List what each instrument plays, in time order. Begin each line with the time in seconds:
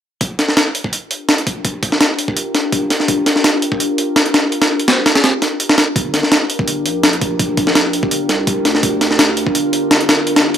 0.21 ambient pad D4 F4 G4 A#4, kick, open hi-hat
0.39 snare, open hi-hat
0.48 snare
0.57 snare, open hi-hat
0.75 open hi-hat
0.84 kick
0.93 open hi-hat
1.11 open hi-hat
1.29 snare, open hi-hat
1.38 closed hi-hat
1.47 kick, open hi-hat
1.65 kick, open hi-hat
1.83 kick, open hi-hat
1.92 snare
2.01 snare, open hi-hat
2.19 open hi-hat
2.28 kick
2.37 open hi-hat
2.55 snare, open hi-hat
2.72 kick, open hi-hat
2.90 snare, open hi-hat
3.00 snare
3.08 kick, open hi-hat
3.26 snare, open hi-hat
3.36 snare
3.44 snare, open hi-hat
3.62 open hi-hat
3.72 kick
3.80 open hi-hat
3.98 open hi-hat
4.16 snare, open hi-hat
4.26 closed hi-hat
4.34 snare, open hi-hat
4.52 open hi-hat
4.62 snare, open hi-hat
4.80 open hi-hat
4.88 snare, open hi-hat
5.06 snare, open hi-hat
5.15 snare, open hi-hat
5.24 snare, open hi-hat
5.42 snare, open hi-hat
5.60 open hi-hat
5.69 snare
5.78 snare, open hi-hat
5.96 sub bass G1, ambient pad D4 F4 G4 A#4, kick, open hi-hat
6.14 snare, open hi-hat
6.23 snare
6.32 snare, open hi-hat
6.50 open hi-hat
6.59 sub bass G1, kick
6.68 open hi-hat
6.86 sub bass A#1, open hi-hat
7.03 snare, open hi-hat
7.13 closed hi-hat
7.21 kick, open hi-hat
7.39 kick, open hi-hat
7.57 kick, open hi-hat
7.67 snare
7.75 snare, open hi-hat
7.93 open hi-hat
8.03 sub bass G1, kick
8.11 open hi-hat
8.29 sub bass C2, snare, open hi-hat
8.47 kick, open hi-hat
8.65 sub bass D2, snare, open hi-hat
8.75 snare
8.83 kick, open hi-hat
9.01 snare, open hi-hat
9.11 snare
9.19 snare, open hi-hat
9.37 open hi-hat
9.47 sub bass G1, kick
9.55 open hi-hat
9.73 sub bass G1, open hi-hat
9.91 snare, open hi-hat
10.01 closed hi-hat
10.09 snare, open hi-hat
10.27 open hi-hat
10.36 snare, open hi-hat
10.54 open hi-hat